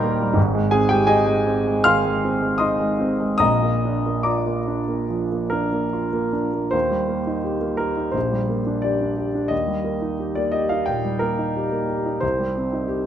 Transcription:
0.00 0.39 A#2 medium
0.00 0.21 G3 medium
0.00 0.03 A#3 medium
0.00 0.30 A#3 medium
0.00 0.39 D#4 medium
0.00 0.33 A#4 medium
0.00 0.39 C5 medium
0.00 0.39 D5 medium
0.00 0.33 G5 medium
0.00 0.36 A#5 medium
0.00 0.39 C6 medium
0.00 0.39 D6 loud
0.21 0.38 G3 soft
0.33 1.82 G#1 medium
0.33 1.80 G#2 medium
0.55 0.83 G#3 soft
0.71 1.02 C4 soft
0.71 0.89 G#4 medium
0.71 0.90 G#5 medium
0.89 1.20 G#3 soft
0.89 1.07 G4 medium
0.89 1.08 G5 medium
1.07 1.39 D#4 soft
1.07 1.81 G#4 medium
1.07 1.81 D#5 medium
1.07 1.85 G#5 medium
1.26 1.58 G#3 soft
1.47 1.78 C4 soft
1.68 1.98 G#3 soft
1.84 2.16 D#3 soft
1.84 2.57 F5 medium
1.84 2.57 C6 medium
1.84 2.60 F6 medium
2.05 2.35 G#3 soft
2.24 2.54 C4 soft
2.42 2.73 G#3 soft
2.58 2.92 D#4 soft
2.58 3.36 D#5 medium
2.58 3.36 C6 medium
2.58 3.36 D#6 medium
2.80 3.12 G#3 soft
3.00 3.33 C4 soft
3.20 3.41 G#3 soft
3.38 5.05 A#1 soft
3.38 5.05 A#2 soft
3.38 4.20 D#5 medium
3.38 4.20 A#5 medium
3.38 4.23 D#6 medium
3.63 3.96 A#3 soft
3.85 4.17 D4 soft
4.06 4.38 A#3 soft
4.23 4.59 F4 soft
4.23 6.31 D5 soft
4.23 6.30 A#5 soft
4.23 6.34 D6 medium
4.46 4.80 A#3 soft
4.67 5.01 D4 soft
4.88 5.22 A#3 soft
5.10 5.44 F3 soft
5.32 5.65 A#3 soft
5.50 5.85 D4 soft
5.50 6.73 A#4 medium
5.73 6.06 A#3 soft
5.93 6.26 F4 soft
6.13 6.47 A#3 soft
6.33 6.65 D4 soft
6.54 6.73 A#3 soft
6.71 8.10 D#2 soft
6.71 7.78 C5 medium
6.91 7.20 G3 soft
7.08 7.37 A#3 soft
7.27 7.55 D#4 soft
7.44 7.72 G4 soft
7.61 7.90 A#3 soft
7.77 8.08 G4 soft
7.77 8.14 A#4 medium
7.96 8.14 D#4 soft
8.12 9.47 A#1 soft
8.12 8.82 C5 medium
8.31 8.59 G3 soft
8.49 8.77 A#3 soft
8.67 8.94 D4 soft
8.82 9.11 G4 soft
8.82 9.51 D5 medium
9.01 9.28 D4 soft
9.17 9.45 G4 soft
9.35 9.52 D4 soft
9.48 10.84 D#2 soft
9.48 10.36 D#5 medium
9.68 9.96 G3 soft
9.84 10.13 A#3 soft
10.02 10.30 D#4 soft
10.20 10.48 G4 soft
10.35 10.65 A#3 soft
10.35 10.54 D5 medium
10.52 10.81 G4 soft
10.52 10.70 D#5 medium
10.69 10.98 D#4 soft
10.69 10.87 F5 medium
10.86 11.15 A#2 soft
10.86 11.21 G5 medium
11.05 11.32 G3 soft
11.19 11.49 A#3 soft
11.19 12.21 A#4 medium
11.38 11.66 D#4 soft
11.56 11.83 G4 soft
11.72 11.99 A#3 soft
11.89 12.16 G4 soft
12.06 12.22 D#4 soft
12.20 13.06 C2 soft
12.20 13.06 C5 medium
12.39 12.65 G3 soft
12.57 12.83 C4 soft
12.73 12.99 D#4 soft
12.88 13.06 G4 soft

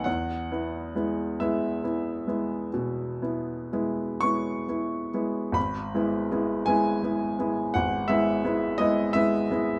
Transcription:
0.04 0.50 E2 soft
0.04 1.39 F#5 medium
0.52 0.92 B3 soft
0.52 0.92 E4 soft
0.95 1.36 G#3 soft
0.95 1.36 B3 soft
0.95 1.36 E4 soft
1.40 1.81 G#3 soft
1.40 1.81 B3 soft
1.40 1.81 E4 soft
1.40 4.22 E5 medium
1.83 2.24 B3 soft
1.83 2.25 E4 soft
2.27 2.69 G#3 soft
2.27 2.69 B3 soft
2.27 2.69 E4 soft
2.74 3.20 B2 soft
3.22 3.69 B3 soft
3.22 3.69 E4 soft
3.73 4.18 G#3 soft
3.73 4.19 B3 soft
3.73 4.19 E4 soft
4.21 4.64 G#3 soft
4.21 4.64 B3 soft
4.21 4.65 E4 soft
4.21 5.55 C#6 medium
4.69 5.10 B3 soft
4.69 5.10 E4 soft
5.14 5.52 G#3 soft
5.14 5.52 B3 soft
5.14 5.52 E4 soft
5.52 5.91 G#1 soft
5.52 6.67 B5 medium
5.94 6.28 G#3 soft
5.94 6.29 B3 soft
5.94 6.28 E4 soft
6.31 6.64 G#3 soft
6.31 6.65 B3 soft
6.31 6.65 E4 soft
6.66 7.00 G#3 soft
6.66 7.00 B3 soft
6.66 7.00 E4 soft
6.66 7.74 G#5 medium
7.03 7.35 G#3 soft
7.03 7.36 B3 soft
7.03 7.36 E4 soft
7.39 7.71 G#3 soft
7.39 7.71 B3 soft
7.39 7.72 E4 soft
7.74 8.10 G#1 soft
7.74 8.10 F#5 medium
8.08 8.41 G#3 soft
8.08 8.41 B3 soft
8.08 8.41 E4 soft
8.08 8.79 E5 medium
8.44 8.76 G#3 soft
8.44 8.76 B3 soft
8.44 8.77 E4 soft
8.78 9.12 G#3 soft
8.78 9.12 B3 soft
8.78 9.13 E4 soft
8.78 9.15 D#5 medium
9.13 9.48 G#3 soft
9.13 9.48 B3 soft
9.13 9.48 E4 soft
9.13 9.79 E5 medium
9.51 9.79 G#3 soft
9.51 9.79 B3 soft
9.51 9.79 E4 soft

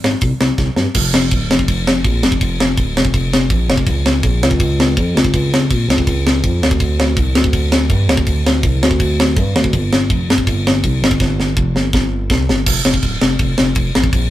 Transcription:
0.04 0.15 G#1 loud
0.04 snare loud
0.21 0.33 C2 medium
0.21 kick loud
0.21 open hi-hat medium
0.40 0.52 C2 medium
0.40 snare loud
0.58 0.69 C2 medium
0.58 kick loud
0.58 snare medium
0.76 0.87 G2 medium
0.76 snare medium
0.95 1.12 F1 loud
0.95 kick loud
0.95 crash loud
0.95 crash medium
1.13 1.31 F1 medium
1.13 snare loud
1.31 1.49 D1 loud
1.31 kick loud
1.31 crash medium
1.50 1.68 F1 medium
1.50 snare loud
1.59 kick medium
1.68 2.03 F1 medium
1.68 kick loud
1.68 crash medium
1.87 snare loud
2.05 2.21 A#1 loud
2.05 kick loud
2.05 crash medium
2.22 2.40 F1 medium
2.22 snare loud
2.32 kick medium
2.41 2.59 F1 loud
2.41 kick loud
2.41 crash medium
2.59 2.77 F1 medium
2.59 snare loud
2.77 2.94 D1 loud
2.77 kick loud
2.77 crash medium
2.95 3.13 F1 medium
2.95 snare loud
3.05 kick medium
3.14 3.49 F1 loud
3.14 kick loud
3.14 crash medium
3.33 snare loud
3.50 3.68 A#1 loud
3.50 kick loud
3.50 crash medium
3.68 3.86 F1 loud
3.68 snare loud
3.77 kick medium
3.86 4.03 C#2 loud
3.86 kick loud
3.86 crash medium
4.04 4.22 C#2 medium
4.04 snare loud
4.23 4.41 A#1 loud
4.23 kick loud
4.23 crash medium
4.41 4.59 C#2 loud
4.41 snare loud
4.51 kick medium
4.60 4.95 C#2 loud
4.60 kick loud
4.60 crash medium
4.80 snare loud
4.97 5.14 F2 medium
4.97 kick loud
4.97 crash medium
5.14 5.32 C#2 loud
5.14 snare loud
5.25 kick loud
5.34 5.50 C#2 loud
5.34 kick loud
5.34 crash medium
5.51 5.69 C#2 medium
5.51 snare loud
5.71 5.87 A#1 medium
5.71 kick loud
5.71 crash medium
5.88 6.06 C#2 loud
5.88 snare loud
5.98 kick medium
6.07 6.42 C#2 loud
6.07 kick loud
6.07 crash medium
6.27 snare loud
6.44 6.61 F2 loud
6.44 kick loud
6.44 crash medium
6.61 6.79 D2 medium
6.61 snare loud
6.71 kick loud
6.80 6.98 D2 medium
6.80 kick loud
6.80 crash medium
6.98 7.16 D2 loud
6.98 snare loud
7.17 7.34 C2 loud
7.17 kick loud
7.17 crash medium
7.35 7.52 D2 loud
7.35 snare loud
7.44 kick medium
7.53 7.89 D2 medium
7.53 kick loud
7.53 crash medium
7.72 snare loud
7.90 8.07 G2 medium
7.90 kick loud
7.90 crash medium
8.07 8.26 D2 medium
8.07 snare loud
8.17 kick loud
8.27 8.44 D2 loud
8.27 kick loud
8.27 crash medium
8.44 8.62 D2 medium
8.44 snare loud
8.63 8.81 C2 loud
8.63 kick loud
8.63 crash medium
8.81 8.99 D2 medium
8.81 snare loud
8.91 kick medium
9.00 9.36 D2 loud
9.00 kick loud
9.00 crash medium
9.20 snare loud
9.36 9.54 G2 loud
9.36 kick loud
9.36 crash medium
9.55 9.72 D2 medium
9.55 snare loud
9.64 kick medium
9.73 9.91 G1 loud
9.73 kick loud
9.73 crash medium
9.91 10.09 G1 loud
9.91 snare loud
10.10 10.28 F1 medium
10.10 kick loud
10.10 crash medium
10.29 10.46 G1 loud
10.29 snare loud
10.38 kick medium
10.47 10.82 G1 loud
10.47 kick loud
10.47 crash medium
10.67 snare loud
10.84 11.01 C2 loud
10.84 kick loud
10.84 crash medium
11.01 11.19 G1 medium
11.01 snare loud
11.11 kick loud
11.20 11.37 G1 loud
11.20 kick loud
11.20 snare medium
11.37 11.56 G1 loud
11.37 snare medium
11.57 11.74 F1 medium
11.57 kick loud
11.75 11.93 G1 medium
11.75 snare medium
11.93 12.29 G1 medium
11.93 kick loud
11.93 snare medium
12.30 12.48 C2 medium
12.30 kick loud
12.30 snare loud
12.49 12.66 G1 loud
12.49 snare loud
12.66 12.81 F1 loud
12.66 kick loud
12.66 crash loud
12.66 crash medium
12.85 12.99 F1 medium
12.85 snare loud
12.94 kick medium
13.03 13.17 D1 medium
13.03 kick medium
13.03 crash medium
13.21 13.36 F1 medium
13.21 snare loud
13.39 13.54 F1 loud
13.39 kick loud
13.39 crash medium
13.58 13.73 F1 loud
13.58 snare loud
13.75 13.91 F1 loud
13.75 kick loud
13.75 crash medium
13.95 14.10 A1 loud
13.95 snare loud
14.04 kick loud
14.13 14.27 A#1 loud
14.13 kick loud
14.13 crash medium

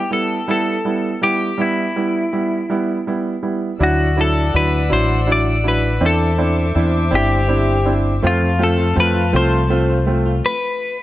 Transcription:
0.00 0.13 G4 medium
0.11 0.37 G3 medium
0.11 0.37 B3 medium
0.11 0.37 E4 medium
0.11 0.50 A4 medium
0.48 0.74 G3 medium
0.48 0.74 B3 medium
0.48 0.74 E4 medium
0.48 1.23 A4 medium
0.85 1.11 G3 medium
0.85 1.11 B3 medium
0.85 1.11 E4 medium
1.21 1.48 G3 medium
1.21 1.48 B3 medium
1.21 1.48 E4 medium
1.21 1.61 G4 medium
1.58 1.84 G3 medium
1.58 1.84 B3 medium
1.58 1.85 E4 medium
1.58 3.04 E4 medium
1.96 2.22 G3 medium
1.96 2.22 B3 medium
1.96 2.22 E4 medium
2.33 2.59 G3 medium
2.33 2.59 B3 medium
2.33 2.59 E4 medium
2.70 2.95 G3 medium
2.70 2.96 B3 medium
2.70 2.96 E4 medium
3.07 3.33 G3 medium
3.07 3.33 B3 medium
3.07 3.33 E4 medium
3.43 3.69 G3 medium
3.43 3.69 B3 soft
3.43 3.69 E4 medium
3.79 4.50 D2 medium
3.79 4.06 F#3 medium
3.79 4.06 D4 medium
3.79 4.06 E4 medium
3.79 5.99 D5 medium
3.79 5.99 F#5 medium
3.79 5.99 E6 medium
3.83 4.20 F#4 medium
4.16 4.43 F#3 medium
4.16 4.43 D4 medium
4.16 4.43 E4 medium
4.21 4.56 A4 medium
4.54 4.89 D2 medium
4.54 4.80 F#3 medium
4.54 4.80 D4 medium
4.54 4.80 E4 medium
4.54 4.93 B4 medium
4.89 5.98 A1 medium
4.89 5.16 F#3 medium
4.89 5.16 D4 medium
4.89 5.16 E4 medium
4.89 5.30 C5 medium
5.27 5.53 F#3 medium
5.27 5.53 D4 medium
5.27 5.54 E4 medium
5.32 5.68 D5 medium
5.63 5.90 F#3 medium
5.63 5.90 D4 medium
5.63 5.90 E4 medium
5.68 6.04 B4 medium
6.01 6.71 E2 medium
6.01 6.27 C4 medium
6.01 6.27 D4 medium
6.01 6.27 E4 medium
6.01 8.21 C5 medium
6.01 8.21 E5 medium
6.01 8.20 D6 medium
6.06 7.18 A4 medium
6.38 6.64 C4 medium
6.38 6.64 D4 medium
6.38 6.64 E4 medium
6.75 7.10 E2 medium
6.75 7.01 C4 medium
6.75 7.01 D4 medium
6.75 7.01 E4 medium
7.11 8.19 G1 medium
7.11 7.38 C4 medium
7.11 7.38 D4 medium
7.11 7.38 E4 medium
7.15 7.93 G4 medium
7.48 7.75 C4 medium
7.48 7.75 D4 medium
7.48 7.75 E4 medium
7.86 8.12 C4 medium
7.86 8.12 D4 medium
7.86 8.12 E4 medium
8.22 8.93 F2 medium
8.22 9.31 F3 medium
8.22 8.49 A3 medium
8.22 8.49 C4 medium
8.22 8.49 F4 medium
8.22 8.77 F4 medium
8.22 10.42 A4 medium
8.22 10.42 F5 medium
8.22 10.42 A5 medium
8.27 8.63 F4 medium
8.43 9.51 C4 medium
8.59 8.85 A3 medium
8.59 8.95 A3 medium
8.59 8.85 C4 medium
8.59 8.86 F4 medium
8.64 8.96 A4 medium
8.78 9.13 F4 medium
8.96 9.32 F2 loud
8.96 9.22 A3 medium
8.96 9.69 A3 soft
8.96 9.22 C4 medium
8.96 9.23 F4 medium
9.00 9.36 B4 medium
9.14 9.32 F4 medium
9.32 10.40 C2 medium
9.32 10.51 F3 medium
9.32 9.59 A3 medium
9.32 9.59 C4 medium
9.32 9.88 F4 medium
9.32 9.59 F4 medium
9.32 10.05 C5 medium
9.52 10.51 C4 medium
9.70 9.96 A3 medium
9.70 10.06 A3 medium
9.70 9.96 C4 medium
9.70 9.96 F4 medium
9.90 10.24 F4 medium
10.06 10.33 A3 medium
10.06 10.52 A3 medium
10.06 10.33 C4 medium
10.06 10.33 F4 medium
10.25 10.51 F4 medium
10.46 11.03 B4 loud

